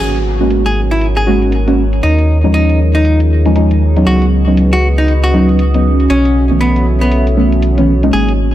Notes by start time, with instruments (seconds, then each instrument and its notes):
Already playing: synth stab A#3 C#4 F#4 G#4, ambient pad F#4 C#5
0.00 sub bass G#1, analog synth pad D#4 F#4 A#4 C#5, hollow-body jazz guitar G#4, ambient pad G#4, closed hi-hat
0.15 closed hi-hat
0.22 ambient pad A#5
0.40 synth stab G#3 A#3 C#4 F#4
0.51 closed hi-hat
0.66 hollow-body jazz guitar G#4, closed hi-hat
0.77 ambient pad D#5
0.91 hollow-body jazz guitar E4
1.01 closed hi-hat
1.17 hollow-body jazz guitar G#4, closed hi-hat
1.27 synth stab G#3 A#3 C#4 F#4
1.42 closed hi-hat
1.52 closed hi-hat
1.68 synth stab G#3 A#3 C#4 F#4, closed hi-hat
1.93 closed hi-hat
2.03 sub bass D#2, hollow-body jazz guitar D#4, ambient pad D#4, analog synth pad F4 G#4, closed hi-hat
2.18 closed hi-hat
2.44 synth stab F3 G#3 C#4 D#4
2.52 hollow-body jazz guitar D#4, ambient pad F5, closed hi-hat
2.69 closed hi-hat
2.95 hollow-body jazz guitar D#4
3.05 closed hi-hat
3.20 closed hi-hat
3.46 synth stab F3 G#3 C#4 D#4, closed hi-hat
3.56 synth stab F3 G#3 C#4 D#4, closed hi-hat
3.71 closed hi-hat
3.96 synth stab F#3 B3 C#4 D#4, closed hi-hat
4.06 sub bass C#2, ambient pad C#4, analog synth pad F#4 B4 D#5, hollow-body jazz guitar F#4, closed hi-hat
4.22 closed hi-hat
4.39 ambient pad D#6
4.47 synth stab F#3 B3 C#4 D#4
4.57 closed hi-hat
4.73 hollow-body jazz guitar F#4, closed hi-hat
4.79 ambient pad G#5
4.98 hollow-body jazz guitar D#4
5.08 closed hi-hat
5.24 hollow-body jazz guitar F#4, closed hi-hat
5.34 synth stab F#3 B3 C#4 D#4
5.49 closed hi-hat
5.59 closed hi-hat
5.74 synth stab F#3 B3 C#4 D#4, closed hi-hat
6.00 closed hi-hat
6.10 sub bass B1, ambient pad B3, hollow-body jazz guitar C#4, analog synth pad A4 C#5 E5, closed hi-hat
6.25 closed hi-hat
6.51 synth stab E3 A3 B3 C#4
6.61 hollow-body jazz guitar B3, closed hi-hat
6.76 closed hi-hat
6.91 ambient pad F#4
7.01 hollow-body jazz guitar B3, ambient pad C#5
7.12 closed hi-hat
7.27 closed hi-hat
7.37 synth stab E3 A3 B3 C#4
7.52 closed hi-hat
7.62 closed hi-hat
7.78 synth stab E3 A3 B3 C#4, closed hi-hat
8.03 synth stab G#3 A#3 C#4 D#4, closed hi-hat
8.13 sub bass G#1, hollow-body jazz guitar G#4, ambient pad G#4, analog synth pad A#4 D#5, closed hi-hat
8.29 closed hi-hat